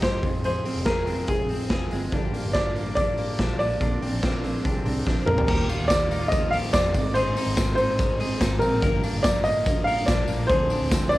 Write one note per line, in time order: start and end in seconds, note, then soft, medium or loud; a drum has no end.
0.00 0.20 G2 medium
0.00 0.28 D#3 medium
0.00 0.23 F3 medium
0.00 0.24 A#3 medium
0.00 0.02 D#4 medium
0.00 0.28 D#4 medium
0.00 0.22 D#4 medium
0.00 0.02 F4 medium
0.00 0.22 F4 medium
0.00 0.03 G4 medium
0.00 0.22 G4 medium
0.00 0.25 A#4 medium
0.00 0.44 C5 medium
0.00 kick loud
0.00 snare loud
0.00 closed hi-hat medium
0.05 0.21 G4 medium
0.22 0.43 F2 medium
0.22 0.59 F2 loud
0.22 0.43 F3 soft
0.22 0.44 G#3 soft
0.22 0.62 C4 medium
0.22 0.44 C4 medium
0.22 0.62 F4 medium
0.22 0.44 G#4 soft
0.22 0.62 G#4 medium
0.22 kick loud
0.22 open hi-hat medium
0.44 0.65 F2 medium
0.44 0.66 C3 medium
0.44 0.66 F3 medium
0.44 0.65 G#3 medium
0.44 0.64 C4 medium
0.44 0.63 G#4 medium
0.44 0.84 C5 loud
0.44 closed hi-hat medium
0.64 0.84 F3 soft
0.64 0.85 G#3 medium
0.64 0.84 C4 medium
0.64 0.87 C4 soft
0.64 0.85 F4 medium
0.64 0.86 G#4 medium
0.64 0.85 A#4 medium
0.64 open hi-hat medium
0.75 1.66 F1 medium
0.85 1.07 F3 medium
0.85 1.08 G#3 medium
0.85 1.06 C4 medium
0.85 1.06 F4 medium
0.85 1.27 G#4 medium
0.85 1.06 G#4 loud
0.85 1.29 A#4 medium
0.85 kick loud
0.85 snare loud
0.85 closed hi-hat medium
1.06 1.28 F3 soft
1.06 1.28 G#3 soft
1.06 1.29 C4 soft
1.06 1.27 C4 medium
1.06 1.27 F4 medium
1.06 1.28 G#4 soft
1.06 1.27 A#4 medium
1.06 open hi-hat medium
1.28 1.49 F2 medium
1.28 1.50 C3 medium
1.28 1.50 F3 medium
1.28 1.50 G#3 medium
1.28 1.48 C4 medium
1.28 1.50 C4 medium
1.28 1.48 F4 medium
1.28 1.88 G#4 medium
1.28 1.48 G#4 medium
1.28 kick loud
1.28 closed hi-hat medium
1.49 1.71 G#3 soft
1.49 1.69 C4 medium
1.49 1.71 C4 medium
1.49 1.69 F4 medium
1.49 1.70 G#4 medium
1.49 1.69 G#4 medium
1.49 open hi-hat medium
1.53 1.69 F3 soft
1.70 1.88 F1 medium
1.70 1.92 F3 medium
1.70 1.92 G#3 medium
1.70 1.90 C4 medium
1.70 1.91 C4 medium
1.70 1.90 F4 medium
1.70 1.90 G#4 medium
1.70 kick loud
1.70 snare loud
1.70 closed hi-hat medium
1.74 1.90 G#4 medium
1.91 2.10 G1 medium
1.91 2.12 F3 medium
1.91 2.13 G#3 medium
1.91 2.13 C4 medium
1.91 2.11 C4 medium
1.91 2.11 F4 medium
1.91 2.12 G#4 medium
1.91 open hi-hat medium
2.12 2.30 G1 loud
2.12 2.33 G2 medium
2.12 2.34 D3 medium
2.12 2.34 F3 medium
2.12 2.32 A#3 loud
2.12 2.33 A#3 medium
2.12 2.31 D4 loud
2.12 2.32 F4 loud
2.12 2.32 G4 loud
2.12 kick loud
2.12 closed hi-hat medium
2.33 2.54 F3 soft
2.33 2.53 A#3 medium
2.33 2.55 A#3 medium
2.33 2.54 D4 medium
2.33 2.53 F4 medium
2.33 2.53 A#4 medium
2.33 open hi-hat medium
2.44 3.35 G1 medium
2.53 2.75 D3 medium
2.53 2.76 F3 medium
2.53 2.74 A#3 medium
2.53 2.74 F4 medium
2.53 2.74 G4 loud
2.53 2.94 D5 loud
2.53 kick loud
2.53 snare loud
2.53 closed hi-hat medium
2.57 2.74 D4 medium
2.75 2.96 F3 soft
2.75 2.95 A#3 medium
2.75 2.97 A#3 medium
2.75 2.96 D4 medium
2.75 2.95 F4 medium
2.75 2.95 G4 medium
2.75 open hi-hat medium
2.95 3.17 G2 medium
2.95 3.18 D3 medium
2.95 3.18 F3 medium
2.95 3.16 A#3 medium
2.95 3.18 A#3 medium
2.95 3.16 D4 medium
2.95 3.16 F4 medium
2.95 3.16 G4 medium
2.95 3.55 D5 loud
2.95 kick loud
2.95 closed hi-hat medium
3.17 3.38 F3 soft
3.17 3.37 A#3 medium
3.17 3.39 A#3 medium
3.17 3.38 D4 medium
3.17 3.37 F4 medium
3.17 3.37 G4 medium
3.17 open hi-hat medium
3.38 3.57 A#1 medium
3.38 3.59 D3 medium
3.38 3.60 F3 medium
3.38 3.58 A#3 medium
3.38 3.60 A#3 medium
3.38 3.58 D4 medium
3.38 3.58 F4 medium
3.38 3.58 G4 loud
3.38 kick loud
3.38 snare loud
3.38 closed hi-hat medium
3.59 3.78 A#1 medium
3.59 3.80 F3 soft
3.59 3.79 A#3 medium
3.59 3.81 A#3 medium
3.59 3.80 D4 medium
3.59 3.79 F4 medium
3.59 3.79 A#4 medium
3.59 5.02 D5 loud
3.59 open hi-hat medium
3.80 3.99 A#1 loud
3.80 4.01 A#2 medium
3.80 4.02 D3 medium
3.80 4.02 F3 medium
3.80 4.00 C4 medium
3.80 4.02 C4 medium
3.80 4.00 D4 medium
3.80 4.00 A#4 medium
3.80 kick loud
3.80 closed hi-hat medium
4.01 4.22 F3 soft
4.01 4.21 C4 medium
4.01 4.23 C4 medium
4.01 4.22 D4 medium
4.01 4.21 D4 medium
4.01 4.21 A#4 medium
4.01 open hi-hat medium
4.12 4.65 A#1 medium
4.22 4.43 D3 medium
4.22 4.44 F3 medium
4.22 4.41 C4 loud
4.22 4.43 C4 medium
4.22 4.42 D4 loud
4.22 4.41 D4 medium
4.22 4.42 A#4 loud
4.22 kick loud
4.22 snare loud
4.22 closed hi-hat medium
4.33 4.64 D4 medium
4.43 4.64 F3 medium
4.43 4.62 C4 medium
4.43 4.65 C4 medium
4.43 4.64 D4 medium
4.43 4.62 D4 medium
4.43 4.62 G#4 loud
4.43 4.63 A#5 medium
4.43 open hi-hat medium
4.64 4.82 C2 loud
4.64 4.85 A#2 medium
4.64 4.86 D3 medium
4.64 4.86 F3 medium
4.64 4.83 C4 medium
4.64 4.86 C4 loud
4.64 4.83 D4 medium
4.64 4.84 D4 loud
4.64 4.83 G4 loud
4.64 5.03 G5 medium
4.64 kick loud
4.64 closed hi-hat medium
4.85 5.03 C2 medium
4.85 5.06 F3 soft
4.85 5.04 C4 medium
4.85 5.07 C4 medium
4.85 5.06 D4 medium
4.85 5.04 D4 medium
4.85 5.05 A#4 loud
4.85 open hi-hat medium
5.06 5.24 A#1 medium
5.06 5.27 D3 medium
5.06 5.28 F3 medium
5.06 5.25 C4 loud
5.06 5.28 C4 medium
5.06 5.25 D4 loud
5.06 5.26 D4 medium
5.06 5.25 C5 loud
5.06 5.45 F5 medium
5.06 kick loud
5.06 snare medium
5.26 5.45 A#1 loud
5.26 5.46 C4 medium
5.26 5.49 C4 medium
5.26 5.48 D4 medium
5.26 5.46 D4 medium
5.26 5.66 A#4 medium
5.26 5.47 A#4 medium
5.26 mid tom medium
5.31 5.49 F3 soft
5.38 floor tom medium
5.48 5.66 D#2 loud
5.48 5.69 D#3 medium
5.48 5.70 G3 medium
5.48 5.70 A#3 medium
5.48 5.68 F4 loud
5.48 6.52 G4 medium
5.48 kick loud
5.48 crash loud
5.69 5.90 G3 soft
5.69 5.91 A#3 medium
5.69 5.90 F4 medium
5.69 open hi-hat medium
5.69 tambourine medium
5.79 6.70 D#2 medium
5.88 6.11 D#3 medium
5.88 6.12 G3 medium
5.88 6.32 D5 loud
5.88 kick loud
5.88 snare loud
5.88 hi-hat pedal medium
5.88 ride medium
5.88 tambourine medium
5.92 6.12 A#3 medium
5.92 6.09 F4 medium
6.11 6.31 G3 soft
6.11 6.33 A#3 soft
6.11 6.22 D#4 medium
6.11 6.32 F4 medium
6.11 open hi-hat medium
6.11 tambourine medium
6.22 6.73 F4 medium
6.28 6.52 D#3 medium
6.28 6.99 F3 medium
6.28 6.52 D#5 medium
6.28 kick loud
6.28 hi-hat pedal medium
6.28 ride medium
6.32 6.53 G3 medium
6.32 6.53 A#3 medium
6.32 6.51 F4 medium
6.32 tambourine soft
6.51 6.74 A#3 medium
6.51 6.73 F4 medium
6.51 6.99 G4 medium
6.51 6.56 F5 loud
6.51 open hi-hat medium
6.51 tambourine soft
6.55 6.73 G3 soft
6.73 6.92 F2 loud
6.73 6.94 D#3 medium
6.73 6.95 G3 medium
6.73 6.95 A#3 medium
6.73 6.93 F4 loud
6.73 7.12 D5 loud
6.73 kick loud
6.73 snare loud
6.73 hi-hat pedal medium
6.73 ride medium
6.73 tambourine medium
6.93 7.30 G#1 loud
6.93 7.14 G#2 medium
6.93 7.15 G#3 medium
6.93 7.15 C4 medium
6.93 7.15 D#4 medium
6.93 kick loud
6.93 open hi-hat medium
6.93 tambourine medium
7.14 7.36 G#2 medium
7.14 7.36 D#3 medium
7.14 7.36 G#3 medium
7.14 7.37 C4 medium
7.14 7.34 D#4 medium
7.14 8.19 G#4 medium
7.14 7.74 C5 loud
7.14 hi-hat pedal medium
7.14 ride medium
7.36 7.57 G#3 soft
7.36 7.57 C4 medium
7.36 7.57 D#4 medium
7.36 open hi-hat medium
7.36 tambourine medium
7.46 8.37 G#1 loud
7.57 7.78 G#2 medium
7.57 7.78 D#3 medium
7.57 7.78 G#3 medium
7.57 7.78 C4 medium
7.57 7.76 D#4 medium
7.57 kick loud
7.57 snare loud
7.57 hi-hat pedal medium
7.57 ride medium
7.57 tambourine loud
7.75 7.99 C4 medium
7.75 7.98 D#4 medium
7.75 8.63 C5 loud
7.75 open hi-hat medium
7.75 tambourine medium
7.80 7.98 G#3 soft
7.98 8.19 D#3 medium
7.98 8.20 G#3 medium
7.98 8.20 C4 medium
7.98 8.18 D#4 medium
7.98 kick loud
7.98 hi-hat pedal medium
7.98 ride medium
7.98 tambourine soft
8.19 8.41 G#3 medium
8.19 8.41 C4 medium
8.19 8.40 D#4 medium
8.19 8.83 G#4 medium
8.19 open hi-hat medium
8.19 tambourine soft
8.40 8.59 G#1 medium
8.40 8.61 G#2 loud
8.40 8.62 D#3 medium
8.40 8.62 G#3 loud
8.40 8.62 C4 medium
8.40 8.61 D#4 loud
8.40 kick loud
8.40 snare loud
8.40 hi-hat pedal medium
8.40 ride medium
8.40 tambourine medium
8.59 8.79 A#1 medium
8.59 8.83 D#4 medium
8.59 8.99 A#4 medium
8.59 open hi-hat medium
8.59 tambourine medium
8.63 8.83 G#3 soft
8.63 8.83 C4 medium
8.82 9.00 G1 loud
8.82 9.03 G2 medium
8.82 9.04 D3 medium
8.82 9.04 F3 medium
8.82 9.04 A#3 medium
8.82 9.02 F4 loud
8.82 9.86 A#4 medium
8.82 kick loud
8.82 hi-hat pedal medium
8.82 ride medium
8.82 tambourine soft
9.03 9.25 F3 medium
9.03 9.25 A#3 medium
9.03 10.08 D4 medium
9.03 9.24 F4 medium
9.03 open hi-hat medium
9.03 tambourine medium
9.13 10.03 G1 medium
9.23 9.45 G2 medium
9.23 9.46 D3 medium
9.23 9.46 F3 medium
9.23 9.46 A#3 medium
9.23 9.45 D5 medium
9.23 kick loud
9.23 snare loud
9.23 hi-hat pedal medium
9.23 ride medium
9.23 tambourine loud
9.27 9.44 F4 medium
9.44 9.67 A#3 medium
9.44 9.66 F4 medium
9.44 9.83 D#5 loud
9.44 open hi-hat medium
9.44 tambourine medium
9.48 9.65 F3 soft
9.65 9.87 D3 medium
9.65 9.87 F3 medium
9.65 9.88 A#3 medium
9.65 9.86 F4 medium
9.65 kick loud
9.65 hi-hat pedal medium
9.65 ride medium
9.65 tambourine soft
9.84 10.08 F4 medium
9.84 10.50 A#4 medium
9.84 10.07 F5 loud
9.84 open hi-hat medium
9.84 tambourine soft
9.89 10.08 F3 soft
9.89 10.08 A#3 medium
10.06 10.26 A#1 medium
10.06 10.29 G2 medium
10.06 10.29 D3 medium
10.06 10.29 F3 medium
10.06 10.30 A#3 medium
10.06 10.54 D4 medium
10.06 10.27 F4 medium
10.06 10.50 D5 medium
10.06 kick loud
10.06 snare loud
10.06 hi-hat pedal medium
10.06 ride medium
10.06 tambourine medium
10.28 10.46 A#1 loud
10.28 10.51 A#3 medium
10.28 10.50 F4 medium
10.28 open hi-hat medium
10.28 tambourine medium
10.32 10.50 F3 soft
10.47 10.67 D2 loud
10.47 10.71 D3 medium
10.47 11.13 C5 loud
10.47 kick loud
10.47 hi-hat pedal medium
10.47 ride medium
10.51 10.71 F3 medium
10.51 10.72 C4 medium
10.51 10.71 D4 medium
10.51 10.69 G#4 medium
10.70 10.92 D4 medium
10.70 10.92 G#4 medium
10.70 open hi-hat medium
10.70 tambourine medium
10.74 10.91 C4 medium
10.81 11.18 D2 medium
10.91 11.12 D3 medium
10.91 11.12 F3 medium
10.91 11.13 C4 medium
10.91 11.13 D4 medium
10.91 11.11 G#4 loud
10.91 kick loud
10.91 snare loud
10.91 hi-hat pedal medium
10.91 ride medium
10.91 tambourine loud
11.09 11.18 G#4 medium
11.09 11.18 D5 loud
11.09 open hi-hat medium
11.09 tambourine medium
11.14 11.18 D4 medium